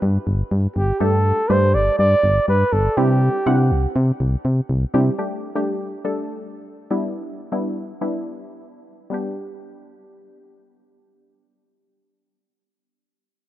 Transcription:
0.00 0.18 G2 loud
0.00 0.34 G3 medium
0.00 0.34 B3 medium
0.00 0.34 D4 medium
0.00 0.34 E4 medium
0.00 0.34 F#4 medium
0.27 0.43 G1 loud
0.51 0.67 G2 loud
0.76 0.92 G1 loud
0.76 1.02 G4 medium
1.00 1.33 G2 loud
1.00 1.41 G3 medium
1.00 1.41 A3 medium
1.00 1.41 D4 medium
1.00 1.41 G4 medium
1.00 1.51 A4 loud
1.00 1.41 A4 loud
1.50 1.76 G2 loud
1.50 2.31 G3 medium
1.50 2.31 A3 medium
1.50 2.31 D4 medium
1.50 2.31 G4 medium
1.50 2.31 B4 medium
1.50 1.76 C5 loud
1.74 1.90 G1 loud
1.74 1.98 D5 loud
1.99 2.15 G2 loud
1.99 2.45 D5 loud
2.23 2.40 G1 loud
2.48 2.64 G2 loud
2.48 2.74 B4 loud
2.73 2.89 G1 loud
2.73 2.99 A4 loud
2.97 3.29 C3 loud
2.97 3.38 G3 medium
2.97 3.38 C4 medium
2.97 3.38 D4 medium
2.97 3.38 E4 medium
2.97 3.96 G4 medium
2.97 3.38 G4 loud
3.46 3.73 C3 loud
3.46 4.27 G3 medium
3.46 4.27 C4 medium
3.46 4.27 D4 medium
3.46 4.27 E4 medium
3.46 4.28 F#5 medium
3.71 3.87 C2 loud
3.96 4.12 C3 loud
4.20 4.36 C2 loud
4.45 4.61 C3 loud
4.69 4.85 C2 loud
4.94 5.10 C3 loud
4.94 5.14 G3 medium
4.94 5.14 C4 medium
4.94 5.14 D4 medium
4.94 5.14 E4 medium
4.94 5.14 G4 loud
5.18 5.49 G3 medium
5.18 5.49 A3 medium
5.18 5.49 D4 medium
5.18 5.49 G4 loud
5.55 5.96 G3 medium
5.55 5.96 A3 medium
5.55 5.96 D4 medium
5.55 5.96 G4 loud
6.05 6.86 G3 medium
6.05 6.86 A3 medium
6.05 6.86 D4 medium
6.05 6.86 A4 loud
6.91 7.41 G3 loud
6.91 7.41 B3 medium
6.91 7.41 D4 medium
6.91 7.41 E4 loud
7.52 7.93 G3 medium
7.52 7.93 B3 medium
7.52 7.93 D4 medium
7.52 7.93 E4 loud
8.01 8.82 G3 medium
8.01 8.82 B3 medium
8.01 8.82 D4 medium
8.01 8.82 E4 loud
9.10 12.35 G3 medium
9.10 12.36 B3 medium
9.10 12.38 D4 medium
9.10 12.39 G4 medium

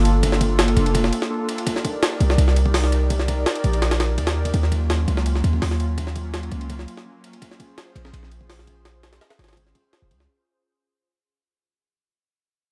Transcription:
0.00 0.75 G1 medium
0.00 0.21 A#3 medium
0.00 0.21 D4 medium
0.00 0.21 F4 medium
0.00 0.21 A4 loud
0.05 ride medium
0.23 1.29 A#3 loud
0.23 1.29 D4 loud
0.23 1.29 F4 loud
0.23 1.29 A4 loud
0.23 kick loud
0.23 ride medium
0.32 snare soft
0.41 kick loud
0.41 ride medium
0.59 snare loud
0.59 ride medium
0.68 ride soft
0.77 1.11 F1 medium
0.77 kick medium
0.77 ride medium
0.86 ride soft
0.95 kick loud
0.95 ride medium
1.04 snare soft
1.13 ride medium
1.22 snare soft
1.30 1.46 A#3 medium
1.30 1.46 D4 medium
1.30 1.47 F4 medium
1.30 1.46 A4 loud
1.48 1.64 A#3 loud
1.48 1.64 D4 medium
1.48 1.64 F4 medium
1.48 1.64 A4 loud
1.48 ride medium
1.58 ride soft
1.66 2.54 D#4 medium
1.66 2.54 G4 medium
1.66 2.54 A#4 medium
1.66 2.54 D5 medium
1.66 kick loud
1.66 ride medium
1.76 snare soft
1.85 kick loud
1.85 ride medium
2.03 snare loud
2.03 ride medium
2.20 2.37 C2 medium
2.20 kick medium
2.20 ride medium
2.30 snare medium
2.38 3.45 C2 loud
2.38 ride medium
2.48 snare soft
2.56 3.08 D#4 loud
2.56 3.08 G4 medium
2.56 3.08 A#4 medium
2.56 3.08 D5 loud
2.56 ride medium
2.66 kick medium
2.74 snare loud
2.74 open hi-hat medium
2.84 snare soft
2.92 ride medium
3.10 4.17 D#4 loud
3.10 4.17 G4 loud
3.10 4.17 A#4 loud
3.10 4.17 D5 loud
3.10 kick loud
3.10 ride medium
3.19 snare soft
3.28 kick loud
3.28 ride medium
3.46 snare loud
3.46 ride medium
3.55 ride soft
3.64 4.19 A#1 medium
3.64 kick medium
3.64 ride medium
3.73 ride soft
3.82 snare loud
3.82 ride medium
3.91 snare loud
3.91 ride medium
4.00 snare loud
4.00 ride medium
4.18 4.52 D#2 medium
4.18 4.34 D#4 medium
4.18 4.34 G4 medium
4.18 4.34 A#4 medium
4.18 4.34 D5 loud
4.18 kick medium
4.18 ride medium
4.27 snare loud
4.27 ride medium
4.36 4.52 D#4 loud
4.36 4.52 G4 medium
4.36 4.52 A#4 medium
4.36 4.52 D5 loud
4.45 kick medium
4.45 ride medium
4.54 5.06 D#2 medium
4.54 5.42 F#3 medium
4.54 5.42 A#3 medium
4.54 5.42 C#4 medium
4.54 5.42 F4 medium
4.54 kick loud
4.54 ride medium
4.63 snare soft
4.72 kick loud
4.72 ride medium
4.90 snare loud
4.90 ride medium
5.08 5.42 C#2 medium
5.08 kick medium
5.08 ride medium
5.17 snare medium
5.26 ride medium
5.35 snare soft
5.44 5.60 D#2 loud
5.44 5.96 F#3 loud
5.44 5.96 A#3 medium
5.44 5.96 C#4 medium
5.44 5.96 F4 loud
5.44 ride medium
5.53 kick medium
5.62 6.50 D#2 medium
5.62 snare loud
5.62 open hi-hat medium
5.71 snare soft
5.80 ride medium
5.98 7.04 F#3 loud
5.98 7.04 A#3 loud
5.98 7.04 C#4 loud
5.98 7.04 F4 loud
5.98 kick loud
5.98 ride medium
6.07 snare soft
6.16 kick loud
6.16 ride medium
6.34 snare loud
6.34 ride medium
6.43 ride soft
6.52 6.86 C#2 medium
6.52 kick loud
6.52 ride medium
6.61 ride soft
6.70 kick loud
6.70 ride medium
6.79 snare soft
6.88 ride medium
6.97 snare soft
7.05 7.22 F#3 medium
7.05 7.21 A#3 medium
7.05 7.22 C#4 medium
7.05 7.21 F4 loud
7.24 7.39 F#3 medium
7.24 7.39 A#3 medium
7.24 7.39 C#4 medium
7.24 7.39 F4 loud
7.24 ride medium
7.33 ride soft
7.42 8.29 C#4 medium
7.42 8.29 F4 medium
7.42 8.29 G#4 medium
7.42 8.29 C5 medium
7.42 kick loud
7.42 ride medium
7.51 snare soft
7.60 kick loud
7.60 ride medium
7.78 snare loud
7.78 ride medium
7.96 8.12 A#1 medium
7.96 kick medium
7.96 ride medium
8.05 snare medium
8.13 9.20 A#1 loud
8.13 ride medium
8.23 snare soft
8.31 8.83 C#4 medium
8.31 8.83 F4 medium
8.31 8.83 G#4 medium
8.31 8.83 C5 loud
8.31 ride medium
8.41 kick medium
8.50 snare loud
8.50 open hi-hat medium
8.59 snare soft
8.67 kick medium
8.67 ride medium
8.85 9.73 C#4 loud
8.85 9.73 F4 loud
8.85 9.73 G#4 loud
8.85 9.73 C5 loud
8.85 snare loud
8.85 ride medium
9.03 snare loud
9.03 ride medium
9.13 snare loud
9.13 ride medium
9.21 snare loud
9.21 ride medium
9.30 snare loud
9.30 ride medium
9.39 9.74 G#1 medium
9.39 snare medium
9.39 ride medium
9.44 snare medium
9.44 ride medium
9.48 snare medium
9.48 ride medium
9.53 snare medium
9.53 ride medium
9.57 kick loud
9.57 ride medium
9.67 snare soft
9.74 9.82 C#4 medium
9.74 9.82 F4 medium
9.74 9.82 G#4 medium
9.74 9.82 C5 medium
9.74 kick medium
9.74 ride medium
9.84 10.27 C#4 medium
9.84 10.27 F4 medium
9.84 10.27 G#4 medium
9.84 10.27 C5 loud
9.93 snare loud
9.93 ride medium
10.02 10.13 F1 medium
10.11 10.27 C#2 medium
10.11 kick medium
10.11 ride medium
10.20 snare soft

